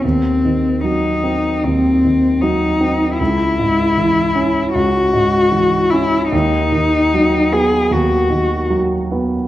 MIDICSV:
0, 0, Header, 1, 3, 480
1, 0, Start_track
1, 0, Tempo, 800000
1, 23, Time_signature, 4, 2, 24, 8
1, 983, Tempo, 778210
1, 3383, Tempo, 797872
1, 5758, End_track
2, 0, Start_track
2, 0, Title_t, "Cello"
2, 0, Program_c, 0, 42
2, 23, Note_on_c, 0, 60, 45
2, 504, Note_off_c, 0, 60, 0
2, 509, Note_on_c, 0, 63, 54
2, 979, Note_on_c, 0, 60, 51
2, 988, Note_off_c, 0, 63, 0
2, 1462, Note_on_c, 0, 63, 53
2, 1471, Note_off_c, 0, 60, 0
2, 1938, Note_off_c, 0, 63, 0
2, 1941, Note_on_c, 0, 64, 61
2, 2879, Note_off_c, 0, 64, 0
2, 2898, Note_on_c, 0, 66, 62
2, 3607, Note_on_c, 0, 64, 55
2, 3616, Note_off_c, 0, 66, 0
2, 3852, Note_off_c, 0, 64, 0
2, 3856, Note_on_c, 0, 63, 64
2, 4586, Note_on_c, 0, 68, 61
2, 4595, Note_off_c, 0, 63, 0
2, 4825, Note_on_c, 0, 66, 53
2, 4834, Note_off_c, 0, 68, 0
2, 5299, Note_off_c, 0, 66, 0
2, 5758, End_track
3, 0, Start_track
3, 0, Title_t, "Grand piano"
3, 0, Program_c, 1, 0
3, 0, Control_c, 1, 64, 127
3, 29, Note_on_c, 1, 39, 31
3, 32, Control_c, 1, 64, 0
3, 116, Control_c, 1, 64, 127
3, 271, Note_on_c, 1, 51, 28
3, 503, Note_on_c, 1, 54, 26
3, 651, Note_off_c, 1, 51, 0
3, 743, Note_on_c, 1, 60, 30
3, 887, Note_off_c, 1, 54, 0
3, 961, Note_off_c, 1, 39, 0
3, 984, Note_on_c, 1, 39, 32
3, 1127, Note_off_c, 1, 60, 0
3, 1232, Note_on_c, 1, 51, 28
3, 1468, Note_on_c, 1, 54, 29
3, 1611, Note_off_c, 1, 51, 0
3, 1704, Note_on_c, 1, 60, 31
3, 1851, Note_off_c, 1, 54, 0
3, 1921, Note_off_c, 1, 39, 0
3, 1945, Note_off_c, 1, 60, 0
3, 1949, Note_on_c, 1, 37, 38
3, 1956, Control_c, 1, 64, 0
3, 2041, Control_c, 1, 64, 127
3, 2187, Note_on_c, 1, 44, 31
3, 2421, Note_on_c, 1, 52, 30
3, 2565, Note_off_c, 1, 44, 0
3, 2658, Note_on_c, 1, 61, 33
3, 2803, Note_off_c, 1, 52, 0
3, 2877, Note_off_c, 1, 37, 0
3, 2903, Note_on_c, 1, 37, 34
3, 3044, Note_off_c, 1, 61, 0
3, 3139, Note_on_c, 1, 44, 31
3, 3375, Note_on_c, 1, 52, 31
3, 3524, Note_off_c, 1, 44, 0
3, 3621, Note_on_c, 1, 61, 34
3, 3762, Note_off_c, 1, 52, 0
3, 3841, Note_off_c, 1, 37, 0
3, 3860, Note_on_c, 1, 39, 42
3, 3863, Note_off_c, 1, 61, 0
3, 3873, Control_c, 1, 64, 0
3, 3966, Control_c, 1, 64, 127
3, 4100, Note_on_c, 1, 51, 34
3, 4351, Note_on_c, 1, 54, 33
3, 4488, Note_off_c, 1, 51, 0
3, 4583, Note_on_c, 1, 59, 37
3, 4725, Note_off_c, 1, 54, 0
3, 4791, Note_off_c, 1, 39, 0
3, 4815, Note_on_c, 1, 39, 37
3, 4957, Note_off_c, 1, 59, 0
3, 5048, Note_on_c, 1, 51, 34
3, 5292, Note_on_c, 1, 54, 34
3, 5440, Note_off_c, 1, 51, 0
3, 5541, Note_on_c, 1, 59, 36
3, 5685, Note_off_c, 1, 54, 0
3, 5758, Note_off_c, 1, 39, 0
3, 5758, Note_off_c, 1, 59, 0
3, 5758, End_track
0, 0, End_of_file